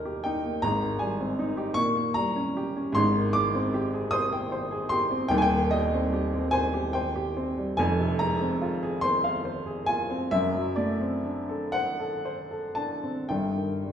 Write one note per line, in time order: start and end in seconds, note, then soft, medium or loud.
0.00 0.59 D#1 medium
0.00 0.59 D#2 medium
0.00 0.65 A#2 soft
0.00 0.65 G3 medium
0.00 0.45 A#3 medium
0.00 0.26 D#4 medium
0.00 0.05 G4 medium
0.00 0.65 A#4 medium
0.00 0.65 D#5 medium
0.00 0.24 G5 loud
0.00 0.66 G#5 medium
0.00 0.24 A#5 medium
0.05 0.37 G4 medium
0.24 0.56 D#4 medium
0.24 0.63 G5 loud
0.45 0.64 A#3 medium
0.62 1.73 G#1 medium
0.62 1.73 G#2 medium
0.62 1.00 A#5 loud
0.82 1.12 D#3 medium
0.99 1.31 G3 medium
0.99 1.76 G#5 medium
1.20 1.50 C4 medium
1.39 1.69 D#4 medium
1.57 1.77 G4 medium
1.74 2.93 A#2 medium
1.74 2.15 C#6 loud
1.96 2.28 A#3 medium
2.14 2.49 G3 medium
2.14 2.96 A#5 loud
2.36 2.68 C#4 medium
2.57 2.89 G4 medium
2.76 2.97 C#4 medium
2.92 5.27 G#1 medium
2.92 5.26 G#2 loud
2.92 3.35 C6 loud
3.16 3.48 D#3 medium
3.33 3.66 G#3 medium
3.33 4.12 D6 loud
3.55 3.86 C4 medium
3.74 4.05 G4 medium
3.93 4.25 G#4 medium
4.11 4.45 C5 medium
4.11 4.91 D#6 loud
4.33 4.64 G5 medium
4.52 4.84 C5 medium
4.71 5.03 G#4 medium
4.89 5.23 G4 medium
4.89 5.31 C6 loud
5.11 5.32 C4 medium
5.28 7.73 D#1 medium
5.28 7.73 D#2 medium
5.28 5.37 G5 loud
5.38 5.44 G#5 loud
5.42 5.71 G5 loud
5.53 5.85 D#3 medium
5.71 6.05 G3 medium
5.71 6.52 D#5 loud
5.94 6.26 C4 medium
6.13 6.45 G4 medium
6.34 6.66 C4 medium
6.51 6.86 C5 medium
6.51 6.93 G#5 loud
6.74 7.07 G4 medium
6.93 7.28 C5 medium
6.93 7.77 G5 loud
7.16 7.49 G4 medium
7.37 7.70 C4 medium
7.58 7.78 G3 medium
7.77 10.27 F1 medium
7.77 10.28 F2 medium
7.77 8.19 G#5 loud
8.00 8.32 C3 medium
8.19 8.53 G#3 medium
8.19 9.01 A#5 loud
8.42 8.74 C4 medium
8.62 8.94 F4 medium
8.83 9.15 G#4 medium
9.01 9.36 C5 medium
9.01 9.87 C6 loud
9.24 9.57 F5 medium
9.45 9.79 C5 medium
9.66 10.00 G#4 medium
9.86 10.23 F4 medium
9.86 10.31 G#5 loud
10.10 10.32 C4 medium
10.31 13.25 F#1 medium
10.31 13.25 F#2 medium
10.31 10.77 E5 loud
10.55 10.91 F#3 soft
10.76 11.14 A3 medium
10.76 11.72 D5 medium
11.01 11.38 C4 medium
11.24 11.63 D4 medium
11.49 11.89 A4 medium
11.72 12.14 C5 medium
11.72 12.75 F#5 loud
11.99 12.40 A4 medium
12.25 12.66 C5 medium
12.51 12.92 A4 medium
12.75 13.18 D4 medium
12.75 13.28 A5 medium
13.04 13.29 C4 soft
13.29 13.92 G1 medium
13.29 13.92 G2 medium
13.29 13.92 G5 medium
13.57 13.92 D#3 soft
13.84 13.92 G3 soft